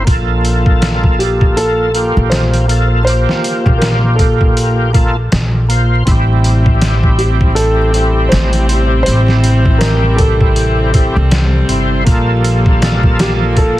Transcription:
0.05 A#1 A#3 F4, kick, closed hi-hat
0.10 A4
0.45 closed hi-hat
0.66 kick
0.82 snare, closed hi-hat
1.04 kick
1.19 G4, closed hi-hat
1.41 kick
1.57 A4, closed hi-hat
1.94 A#3 F4 G4, closed hi-hat
2.17 A#1
2.30 C5, snare, closed hi-hat
2.54 closed hi-hat
2.68 A#3 F4 A4, closed hi-hat
3.03 A#3 F4 C5
3.07 G4, closed hi-hat
3.29 snare
3.44 closed hi-hat
3.66 A#1, kick
3.78 A#4, snare, closed hi-hat
4.15 A4, kick, closed hi-hat
4.41 kick
4.57 closed hi-hat
4.93 A#3 F4 A4, kick, closed hi-hat
5.32 A#1, snare, closed hi-hat
5.69 A#3 F4 C5, closed hi-hat
6.05 A1 C3 G3 C4 E4, kick, closed hi-hat
6.11 G4
6.44 closed hi-hat
6.66 kick
6.81 snare, closed hi-hat
7.03 kick
7.18 G4, closed hi-hat
7.41 kick
7.55 A4, closed hi-hat
7.94 C4 E4 G4, closed hi-hat
8.29 C5, snare, closed hi-hat
8.33 A1
8.53 closed hi-hat
8.69 C4 E4 G4, closed hi-hat
9.03 C4 C5, closed hi-hat
9.07 A1 E4
9.12 G4
9.28 snare
9.44 closed hi-hat
9.66 kick
9.78 A#4, snare, closed hi-hat
10.16 A4, kick, closed hi-hat
10.41 kick
10.56 closed hi-hat
10.94 C4 E4 G4, kick, closed hi-hat
11.16 C2
11.31 snare, closed hi-hat
11.69 G1 C4 E4 C5, closed hi-hat
12.05 A#1 F3 A#3 F4, kick, closed hi-hat
12.11 A4
12.44 closed hi-hat
12.66 kick
12.82 snare, closed hi-hat
13.03 kick
13.19 G4, snare, closed hi-hat
13.57 A4, kick, closed hi-hat

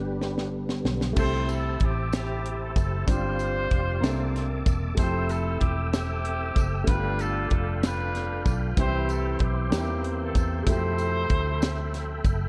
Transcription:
Already playing: G1 G2 D3 G3 B3 D4 G4 B4
0.21 snare
0.38 snare
0.69 snare
0.85 B1, snare
1.01 snare
1.13 C2 C3 A3 C4 E4 G4 C5 E5 A5, kick, crash
1.17 E4 G4 A4 C5, tambourine
1.49 A4, closed hi-hat, tambourine
1.80 A1 G4, kick, closed hi-hat
2.13 E4 G4, snare, closed hi-hat, tambourine
2.45 closed hi-hat
2.61 A4
2.75 F#1 A4, kick, closed hi-hat, tambourine
3.06 G1 G2 G3 C4 D4 F4 G4 C5 D5 F5 C6, kick, closed hi-hat, tambourine
3.39 closed hi-hat, tambourine
3.71 F1, kick, closed hi-hat
4.00 C2 C3 A#3 C4 D4 E5 A5 D6, snare, closed hi-hat, tambourine
4.05 A4
4.36 snare, closed hi-hat
4.66 E1, kick, closed hi-hat, tambourine
4.95 F1 A3 C4 E4 C5 G5, kick, closed hi-hat
4.99 F3 A4 E5 E6, tambourine
5.03 G4
5.29 A4, closed hi-hat, tambourine
5.60 E1 G4, kick, closed hi-hat
5.90 C4 E4 G4, snare, closed hi-hat, tambourine
6.25 closed hi-hat
6.56 F#1, kick, closed hi-hat, tambourine
6.84 G1 A3 B3 D4 B4 F5 B5, kick, closed hi-hat
6.88 G2 F4 G4, tambourine
7.19 A4, closed hi-hat, tambourine
7.50 F1 A4, kick, closed hi-hat
7.83 D4 F4 B4, snare, closed hi-hat, tambourine
8.15 snare, closed hi-hat
8.46 B1, kick, closed hi-hat, tambourine
8.76 C2 E3 G3 C4 E4 G4 C5 E5 C6, kick, closed hi-hat, tambourine
9.09 A4, closed hi-hat, tambourine
9.39 B1, kick, closed hi-hat
9.43 G4
9.70 E2 E3 G3 A#3 C4 D#4 G4 E5, snare, closed hi-hat, tambourine
9.74 A#3 C4 G4
9.79 E4
10.04 closed hi-hat
10.22 A4
10.35 E2 A4, kick, closed hi-hat, tambourine
10.63 F2 B2 G#3 E4 A4 B5, kick
10.67 F3 A3 G4 C5, closed hi-hat, tambourine
10.98 closed hi-hat, tambourine
11.29 D2, kick, closed hi-hat
11.62 snare, closed hi-hat, tambourine
11.94 snare, closed hi-hat
12.24 F#1, kick, closed hi-hat, tambourine

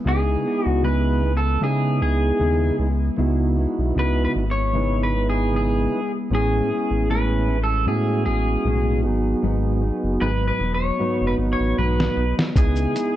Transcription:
0.04 C#2 C#3 G#3 B3 D#4 E4 G#4
0.08 G#4
0.43 G#3 B3 E4
0.66 C#2 F#4
0.82 C#3 G#3 B3 E4 B4
1.22 G#3 B3 E4
1.37 A4
1.60 C#3 G#3 B3 D#4 E4 G#4
1.64 G#4
1.99 C#2 G#3 B3 E4 G#4
2.39 D#2 C#3 G#3 B3 E4
2.78 C#2 G#3 B3 E4
3.17 C#2 C#3 G#3 B3 D#4 E4 F#4
3.56 G#3 B3 E4
3.79 B1
3.95 C#2 C#3 G#3 B3 E4
3.99 B4
4.25 B4
4.34 G#1 G#3 B3 E4
4.51 C#5
4.73 C#3 G#3 B3 D#4 E4 B4
5.03 B4
5.14 G#3 B3 E4
5.30 G#4
5.52 C#3 G#3 B3 E4
5.56 G#4
5.92 G#3 B3 E4
6.30 A1 A2 G#3 B3 C#4 E4 G#4
6.35 G#4
6.69 G#3 C#4 E4
6.91 A1
7.08 A2 G#3 C#4 E4 B4
7.48 G#3 C#4 E4
7.64 A4
7.86 A2 G#3 B3 C#4 E4 F#4 G#4
8.25 A1 G#3 C#4 E4 G#4
8.64 B1 A2 G#3 C#4 E4
9.03 G#1 B3 D#4 F#4 G#4
9.07 F#3
9.42 G#1 G#2 F#3 B3 D#4
9.81 F#3 B3 D#4
10.04 F#1
10.20 G#1 G#2 F#3 B3 D#4 B4
10.48 B4
10.60 E1 F#3 B3 D#4
10.74 C#5
10.98 G#2 F#3 B3 D#4 F#4 B4
11.21 F#1
11.27 B4
11.38 G#1 F#3 B3 D#4
11.53 C#5
11.60 A1
11.77 B1 G#2 F#3 B3 D#4 B4
12.00 snare
12.16 B1 F#3 B3 D#4
12.39 snare
12.54 C#2 C#3 G#3 B3 D#4 E4 G#4, kick, closed hi-hat, shaker
12.76 shaker
12.94 G#3 B3 E4, closed hi-hat, shaker

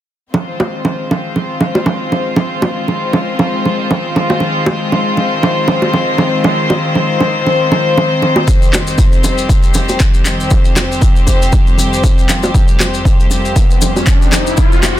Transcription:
0.34 D#3 G#3 C4 F4 C5, low bongo
0.60 high bongo, low bongo
0.85 low bongo
1.11 low bongo
1.36 low bongo
1.61 low bongo
1.75 high bongo
1.86 low bongo
2.12 low bongo
2.36 low bongo
2.62 high bongo, low bongo
2.88 low bongo
3.13 low bongo
3.39 low bongo
3.65 low bongo
3.91 low bongo
4.16 low bongo
4.30 high bongo
4.40 low bongo
4.66 high bongo, low bongo
4.92 low bongo
5.17 low bongo
5.43 low bongo
5.68 low bongo
5.82 high bongo
5.93 low bongo
6.18 low bongo
6.44 low bongo
6.70 high bongo, low bongo
6.95 low bongo
7.20 low bongo
7.47 low bongo
7.72 low bongo
7.98 low bongo
8.22 low bongo
8.36 high bongo
8.48 F2 G3 G4, kick, low bongo, maracas
8.62 maracas
8.73 clap, high bongo, low bongo, maracas
8.87 maracas
8.98 kick, low bongo, maracas
9.12 maracas
9.24 low bongo, maracas
9.38 maracas
9.49 kick, low bongo, maracas
9.63 maracas
9.74 low bongo, maracas
9.89 high bongo, maracas
10.00 kick, clap, low bongo, maracas
10.14 maracas
10.25 clap, low bongo, maracas
10.40 maracas
10.50 kick, low bongo, maracas
10.65 maracas
10.76 clap, high bongo, low bongo, maracas
10.92 maracas
11.01 kick, low bongo, maracas
11.16 maracas
11.27 kick, low bongo, maracas
11.42 maracas
11.52 kick, low bongo, maracas
11.67 maracas
11.78 low bongo, maracas
11.93 maracas
12.04 kick, low bongo, maracas
12.18 maracas
12.29 clap, low bongo, maracas
12.43 high bongo, maracas
12.54 kick, riser, low bongo, maracas
12.68 maracas
12.80 clap, high bongo, low bongo, maracas
12.94 maracas
13.05 kick, low bongo, maracas
13.20 maracas
13.31 low bongo, maracas
13.45 maracas
13.56 kick, low bongo, maracas
13.71 maracas
13.82 low bongo, maracas
13.96 high bongo, maracas
14.07 kick, clap, low bongo, maracas
14.22 maracas
14.32 clap, low bongo, maracas
14.47 maracas
14.57 kick, low bongo, maracas
14.72 maracas
14.83 clap, high bongo, low bongo, maracas

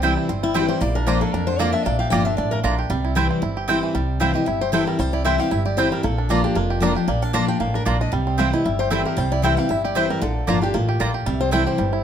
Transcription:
Already playing: C2 C3 G4
0.02 E3 G3 C4 E4 C5 G5
0.17 E4
0.29 G1 G2 C4
0.43 G3 E4
0.54 E3 G3 C4 E4 G4 C5 G5
0.69 G4 C5
0.80 A#1 A#2 A#3 D5
0.95 D4 A#4
1.06 F3 A#3 D4 F4 C5 D5 A#5
1.21 A#3 A4
1.33 F2 D4 A#4
1.47 D3 C5
1.59 F3 A#3 D4 F4 D5 A#5
1.72 D4 E5
1.85 A#1 A#2 A#3 D5
1.99 G4 F5
2.10 G1 F3 A#3 D4 F4 D5 G5 A#5
2.25 D4 F4 E5
2.37 A1 A2 D4 D5
2.51 A#3 A#4
2.63 A#1 A#2 A#3 D4 F4 D5 A#5
2.78 G4
2.90 C2 C3 G3
3.05 E4
3.15 E3 G3 C4 E4 C5 G5
3.31 C4
3.42 G1 G2 E4
3.57 G4
3.68 E3 G3 C4 E4 C5 G5
3.83 E3
3.95 C2 C3 G3
4.20 E3 G3 C4 E4 C5 F5 G5
4.34 C4 E4 G4 D#5
4.46 G1 G2 E4 E5
4.61 G4 C5
4.72 E3 G3 C4 E4 A4 C5 G5
4.87 G3 A#4
4.99 C2 C3 G3 C5
5.13 E4 D5
5.24 E3 G3 C4 E4 C5 E5 G5
5.38 C4 E4 G4 F5
5.51 G1 G2 E4 E5
5.65 G4 D5
5.77 E3 G3 C4 E4 C5 G5
5.92 G3 A#4
6.03 A#1 A#2 A#3 A4
6.18 D4
6.29 F3 A#3 D4 F4 D5 A#5
6.44 D4 G4
6.55 F1 F2 A#3 F4
6.70 G4
6.80 F3 A#3 D4 F4 D5 A#5
6.95 D4 F4 G4
7.08 A#1 A#2 A#3 D5
7.22 D4 F5
7.33 F3 A#3 D4 F4 D5 A5 A#5
7.48 G4 G5
7.60 A1 A2 A#3 F5
7.74 D4 A#4
7.85 A#1 A#2 A#3 F4 D5 A#5
8.01 D4 D#5
8.12 C2 C3 G3
8.27 C4
8.38 E3 G3 C4 E4 C5 F5 G5
8.53 C4 E4 D#5
8.65 G1 G2 G3 E5
8.79 G4 C5
8.90 E3 G3 C4 E4 A4 C5 G5
9.05 G4 A#4
9.17 C2 C3 G3 C5
9.32 E4 D5
9.42 E3 G3 C4 E4 C5 E5 G5
9.57 C4 E4 G4 F5
9.69 G1 G2 E4 E5
9.84 G4 D5
9.95 E3 G3 C4 E4 C5 G5
10.10 G3 A#4
10.21 A#1 A#2 D3 A4
10.47 G1 F3 A#3 D4 F4 D5 A#5
10.62 D4 F4 G4
10.74 A1 A2 A#3 F4
10.89 G4
11.00 A#1 A#2 A#3 F4 D5 A#5
11.14 G4
11.26 C2 C3 G3 E5
11.41 C4 C5
11.51 E3 G3 C4 E4 A4 C5 G5
11.66 G4 C5
11.78 G1 G2 G3
11.93 E4

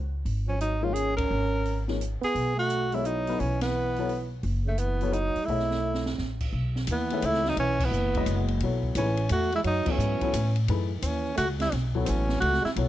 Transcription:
Already playing: C#2
0.25 G#1, open hi-hat
0.47 F3 C#4
0.59 F#3 D#4, closed hi-hat
0.81 F3 G#3 A#3 D#4 F4 G#4 C#5
0.94 C#4 G#4, closed hi-hat
1.16 C#4 A#4, kick, ride
1.31 G#1
1.65 open hi-hat
1.88 F3 A#3 D#4 G#4 C#5, snare
2.01 closed hi-hat
2.21 B3 G#4, muted upright bass stroke, open hi-hat
2.35 B1, open hi-hat
2.57 A3 F#4
2.70 closed hi-hat
2.92 F#3 G#3 B3 E4 A4 C#5, open hi-hat
3.05 F#3 D#4, closed hi-hat
3.27 F#3 B3 E4 A4 B4, open hi-hat
3.40 B1 E3 C#4, open hi-hat
3.61 E3 B3, snare, ride
3.96 F#3 B3 E4 A4 C#5, open hi-hat
4.09 open hi-hat
4.43 F#1, open hi-hat
4.65 C#3 A3
4.77 E3 B3, closed hi-hat
5.01 F#3 B3 E4 A4 C#5, open hi-hat
5.10 F#3 D#4, closed hi-hat
5.35 muted upright bass stroke, open hi-hat
5.45 B1 A3 E4, open hi-hat
5.49 G#4 C#5 D#5 E5
5.59 snare
5.71 snare
5.94 snare
6.06 snare
6.18 A1, snare
6.41 kick, crash
6.53 B1
6.76 snare
6.87 D#2 E3, hi-hat pedal, ride
6.92 B3
7.10 D#3 A3 G#4 C#5 E5, ride
7.22 C#2 A3 E4, hi-hat pedal, ride
7.34 snare
7.45 F#3 D#4, snare
7.57 B1 E3 C#4, ride
7.80 E3, kick, crash
7.84 B3
7.91 F#1, hi-hat pedal
8.14 G#3 C#4 F#4 B4 D#5, kick, ride
8.26 F#1, hi-hat pedal, ride
8.48 ride
8.60 B1 F#3 B3 E4 A4 C#5, ride
8.83 kick
8.95 A1 E3 A3 C#4 D#4 G#4 B4, hi-hat pedal, ride
9.17 ride
9.29 E2 A3 F#4, hi-hat pedal, ride
9.52 G#3 E4, ride
9.64 F#2 F#3 D#4, ride
9.85 E3 F#3 B3 E4 A4 C#5, muted upright bass stroke, kick, crash
9.91 C#4
9.98 G#2, hi-hat pedal
10.21 F#3 B3 E4 A4 C#5, muted upright bass stroke, kick, ride
10.33 A2, hi-hat pedal, ride
10.56 ride
10.68 F#2 E3 A3 D#4 G#4 B4, ride
10.98 D#3
11.02 D#2 E3 C4 C#4, hi-hat pedal, ride
11.36 C#2 A3 F#4, hi-hat pedal, ride
11.59 G#3 E4, snare, ride
11.72 B1, snare, ride
11.95 F#3 B3 E4 A4 C#5, kick
12.04 D#3 C4, hi-hat pedal, ride
12.08 A1 E3 C#4
12.29 snare
12.40 C#2 A3 F#4, ride
12.53 snare
12.62 G#3 E4, muted upright bass stroke, snare
12.76 B1 F#3 B3 E4 A4 C#5, ride

